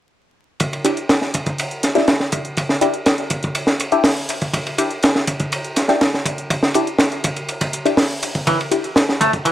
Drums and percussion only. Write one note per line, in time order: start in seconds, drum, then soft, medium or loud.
0.60 kick loud
0.60 closed hi-hat soft
0.60 ride medium
0.73 ride soft
0.85 closed hi-hat medium
0.85 ride medium
0.97 closed hi-hat soft
1.09 snare loud
1.09 closed hi-hat soft
1.09 ride medium
1.22 snare soft
1.34 kick medium
1.34 closed hi-hat medium
1.34 ride medium
1.46 kick medium
1.46 closed hi-hat soft
1.58 closed hi-hat soft
1.58 ride medium
1.71 closed hi-hat soft
1.83 snare soft
1.83 closed hi-hat medium
1.83 ride medium
1.95 snare soft
1.95 closed hi-hat soft
2.08 snare loud
2.08 closed hi-hat soft
2.08 ride medium
2.20 snare soft
2.32 kick medium
2.32 closed hi-hat medium
2.32 ride medium
2.45 closed hi-hat soft
2.57 kick loud
2.57 closed hi-hat soft
2.57 ride medium
2.69 snare soft
2.81 closed hi-hat medium
2.81 ride medium
2.94 closed hi-hat soft
3.06 snare medium
3.06 closed hi-hat soft
3.06 ride medium
3.18 closed hi-hat soft
3.30 kick medium
3.30 closed hi-hat medium
3.30 ride medium
3.43 kick medium
3.43 closed hi-hat soft
3.55 closed hi-hat soft
3.55 ride medium
3.67 snare medium
3.67 closed hi-hat soft
3.80 closed hi-hat medium
3.80 ride medium
3.92 closed hi-hat soft
4.04 snare loud
4.04 closed hi-hat soft
4.04 open hi-hat medium
4.17 closed hi-hat soft
4.29 closed hi-hat medium
4.29 ride medium
4.42 kick medium
4.42 closed hi-hat soft
4.54 kick loud
4.54 closed hi-hat soft
4.54 ride medium
4.66 ride soft
4.78 closed hi-hat medium
4.78 ride medium
4.91 closed hi-hat soft
5.03 snare loud
5.03 closed hi-hat soft
5.03 ride medium
5.15 snare soft
5.27 kick medium
5.27 closed hi-hat medium
5.27 ride medium
5.40 kick medium
5.40 closed hi-hat soft
5.52 closed hi-hat soft
5.52 ride medium
5.64 closed hi-hat soft
5.76 snare soft
5.76 closed hi-hat medium
5.76 ride medium
5.88 snare soft
5.88 closed hi-hat soft
6.01 snare loud
6.01 closed hi-hat soft
6.01 ride medium
6.14 snare soft
6.26 kick medium
6.26 closed hi-hat medium
6.26 ride medium
6.38 closed hi-hat soft
6.50 kick loud
6.50 closed hi-hat soft
6.50 ride medium
6.63 snare soft
6.74 closed hi-hat medium
6.74 ride medium
6.87 closed hi-hat soft
6.98 snare loud
6.98 closed hi-hat soft
6.98 ride medium
7.12 closed hi-hat soft
7.24 kick loud
7.24 closed hi-hat medium
7.24 ride medium
7.36 closed hi-hat soft
7.36 ride soft
7.49 closed hi-hat soft
7.49 ride medium
7.61 kick medium
7.61 closed hi-hat soft
7.61 ride medium
7.73 closed hi-hat medium
7.73 ride soft
7.86 closed hi-hat soft
7.86 ride medium
7.97 snare loud
7.97 closed hi-hat soft
7.97 open hi-hat medium
8.10 closed hi-hat soft
8.23 closed hi-hat medium
8.23 ride medium
8.35 kick medium
8.35 closed hi-hat soft
8.47 kick loud
8.47 closed hi-hat soft
8.47 ride medium
8.60 ride soft
8.71 closed hi-hat medium
8.71 ride medium
8.84 closed hi-hat soft
8.96 snare loud
8.96 closed hi-hat soft
8.96 ride medium
9.09 snare soft
9.21 kick medium
9.21 closed hi-hat medium
9.21 ride medium
9.33 kick medium
9.33 closed hi-hat soft
9.45 closed hi-hat soft
9.45 ride medium